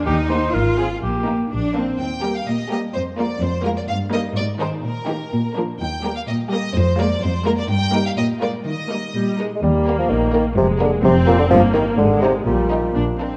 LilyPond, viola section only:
\new Staff \with { instrumentName = "Viola section" } { \time 2/4 \key ees \major \tempo 4 = 126 r8 bes8 r8 c'8 | r8 bes8 r8 bes8 | r8 <g bes>8 r8 <g bes>8 | r8 <aes bes>8 r8 <aes bes>8 |
r8 <g bes>8 r8 <ees ees'>8 | r8 <ees bes>8 r8 <f bes>8 | r8 <g bes>8 r8 <g bes>8 | r8 <aes bes>8 r8 <aes bes>8 |
r8 <g bes>8 r8 <aes bes>8 | r8 <g bes>8 g8 aes8 | bes2 | aes4 c'4 |
bes4 aes4 | g4 d'8 c'8 | }